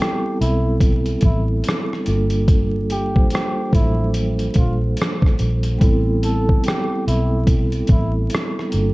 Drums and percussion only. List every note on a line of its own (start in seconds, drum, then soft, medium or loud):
0.02 cross-stick medium
0.41 closed hi-hat medium
0.81 kick medium
0.81 closed hi-hat medium
1.06 closed hi-hat soft
1.21 kick medium
1.21 closed hi-hat medium
1.64 closed hi-hat medium
1.68 cross-stick loud
1.93 cross-stick soft
2.06 closed hi-hat medium
2.30 closed hi-hat medium
2.48 kick loud
2.48 closed hi-hat medium
2.90 closed hi-hat medium
3.16 kick medium
3.30 closed hi-hat medium
3.35 cross-stick loud
3.73 kick loud
3.73 closed hi-hat medium
4.14 closed hi-hat medium
4.39 closed hi-hat soft
4.54 kick medium
4.54 closed hi-hat medium
4.97 closed hi-hat medium
5.02 cross-stick loud
5.22 kick medium
5.26 cross-stick soft
5.39 closed hi-hat medium
5.63 closed hi-hat soft
5.81 kick loud
5.81 closed hi-hat medium
6.23 closed hi-hat medium
6.49 kick medium
6.64 closed hi-hat medium
6.68 cross-stick loud
7.08 closed hi-hat medium
7.47 kick loud
7.47 closed hi-hat medium
7.72 closed hi-hat soft
7.87 kick medium
7.87 closed hi-hat medium
8.30 closed hi-hat medium
8.35 cross-stick loud
8.59 cross-stick soft
8.72 closed hi-hat medium